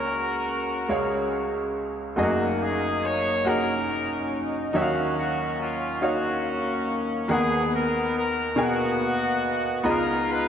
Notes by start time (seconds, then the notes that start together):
Already playing: C#2 C#3 A#3 C#4 F#4 A#4 C#5
0.89 C#2 C#3 G#3 C#4 C#5 F5
2.16 F#1 F#2 A3 A#3 F#4 G#4 D#5
2.20 A#3 D#4
2.62 G#4
3.05 C#5
3.45 A#3 C#4 D#4 F#4 G#4 A#4 F#5
4.73 D#2 D#3 F#3 A#3 C#4 D#4 F#4 C#5 E5
4.82 F5
5.18 F#4
5.61 F4
6.01 A#3 C#4 D#4 F#4 C#5 F5
7.28 D#2 D#3 A#3 B3 G#4 A#4 F#5
7.34 B3
7.74 A#4
8.18 A#4
8.56 B2 B3 G#4 A#4 G#5
8.60 A#3 F#4
9.83 C#2 C#3 B3 F4 D#5 A#5
9.88 D#4 F4 A#4
10.31 B4